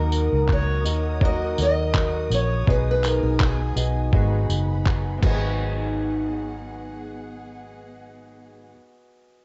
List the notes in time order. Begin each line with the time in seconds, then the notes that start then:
Already playing: D#2 D#3 F#3 A#3 D#4 F#4 A#4 D#5 F#5 D#6
0.12 tambourine
0.32 C#2
0.47 F#3 D#4 F#4 A#4, kick, clap
0.53 C#5
0.84 D#2 A#3 D#4 F#4 A#4 D#5, tambourine
1.20 D#3 F#3 A#3 D#4 F#4 A#4 D#5, kick
1.25 D#5
1.58 D#2 D#5, tambourine
1.93 F#3 D#4 F#4 A#4, kick, clap
2.30 A#1 C#5, tambourine
2.66 B1 B2 D#3 F#3 B3 D#4 F#4 G#4 D#5 G#5, kick
2.70 B4
2.91 B4
3.04 A#4, clap, tambourine
3.23 B1
3.39 F#3 B3 D#4 G#4, kick, clap
3.75 B1 B3 D#4 F#4 G#4 D#5, tambourine
3.79 F#3
4.12 G#1 G#2 D#3 F#3 B3 D#4 F#4 G#4 D#5 F#5 B5, kick
4.49 F#1, tambourine
4.85 F#3 B3 D#4 G#4, kick, clap
5.17 G#2 B3 F#4
5.22 G#1 D#3 B3 G#4 F#5, kick, crash
5.26 F#3 B3 D#5
5.32 D#4 G#4